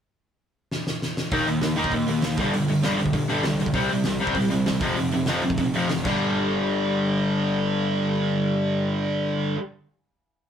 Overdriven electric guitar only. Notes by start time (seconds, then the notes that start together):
1.32 D#3 A#3 D#4
1.48 D#3 A#3
1.63 D#3 A#3
1.77 D#3 A#3 D#4
1.94 D#3 A#3
2.09 D#3 A#3
2.25 D#3 A#3
2.40 G2 D3 G3
2.55 G2 D3
2.70 G2 D3
2.84 G2 D3 G3
3.00 G2 D3
3.13 G2 D3
3.28 G2 D3 G3
3.44 G2 D3
3.59 G2 D3
3.74 C3 G3 C4
3.90 C3 G3
4.05 C3 G3
4.20 C3 G3 C4
4.36 C3 G3
4.50 C3 G3
4.66 C3 G3
4.81 F2 C3 F3
4.97 F2 C3
5.13 F2 C3
5.28 F2 C3 F3
5.44 F2 C3
5.58 F2 C3
5.75 F2 C3 F3
5.90 F2 C3
6.03 G2 D3
6.08 G3